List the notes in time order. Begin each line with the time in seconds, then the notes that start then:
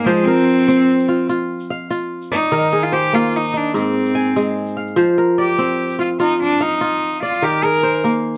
Already playing: G#2 G#3 A#3 D#4 F5 G#5
0.05 F3 G#3 C5, shaker
0.24 C4 A#4
0.38 shaker
0.48 shaker
0.68 C4, shaker
0.99 shaker
1.08 F4
1.29 F4, shaker
1.60 shaker
1.70 F5, shaker
1.90 F4, shaker
2.01 shaker
2.22 shaker
2.32 D#4 D5
2.52 D#3 A#4, shaker
2.63 shaker
2.73 G#4, shaker
2.83 F4
2.92 G4 C5, shaker
3.13 A#3 F4, shaker
3.35 D#4, shaker
3.44 shaker
3.54 D4 D#4, shaker
3.65 shaker
3.74 G#2 C4, shaker
4.05 shaker
4.15 G#5
4.36 G#3, shaker
4.67 shaker
4.77 F5, shaker
4.87 shaker
4.96 F3 C5, shaker
5.18 A#4
5.38 G4 D5, shaker
5.58 C4, shaker
5.90 shaker
5.99 F4
6.20 D#4 F4, shaker
6.42 D4
6.51 shaker
6.61 D#4 F5, shaker
6.81 F4, shaker
7.13 shaker
7.23 F4 D5
7.42 D#3 G4 A#4, shaker
7.63 G#4 A#4
7.74 shaker
7.83 C5, shaker
8.04 A#3, shaker